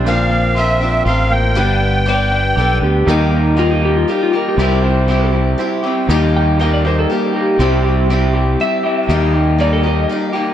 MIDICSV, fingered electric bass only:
0, 0, Header, 1, 2, 480
1, 0, Start_track
1, 0, Tempo, 501672
1, 55, Time_signature, 3, 2, 24, 8
1, 10083, End_track
2, 0, Start_track
2, 0, Title_t, "Fingered electric bass"
2, 0, Program_c, 0, 33
2, 40, Note_on_c, 0, 34, 98
2, 972, Note_off_c, 0, 34, 0
2, 1009, Note_on_c, 0, 33, 95
2, 1498, Note_off_c, 0, 33, 0
2, 1498, Note_on_c, 0, 31, 91
2, 2422, Note_off_c, 0, 31, 0
2, 2456, Note_on_c, 0, 35, 77
2, 2675, Note_off_c, 0, 35, 0
2, 2698, Note_on_c, 0, 38, 83
2, 2916, Note_off_c, 0, 38, 0
2, 2939, Note_on_c, 0, 39, 100
2, 3864, Note_off_c, 0, 39, 0
2, 4379, Note_on_c, 0, 36, 103
2, 5304, Note_off_c, 0, 36, 0
2, 5823, Note_on_c, 0, 39, 97
2, 6745, Note_off_c, 0, 39, 0
2, 7263, Note_on_c, 0, 36, 103
2, 8183, Note_off_c, 0, 36, 0
2, 8694, Note_on_c, 0, 39, 101
2, 9615, Note_off_c, 0, 39, 0
2, 10083, End_track
0, 0, End_of_file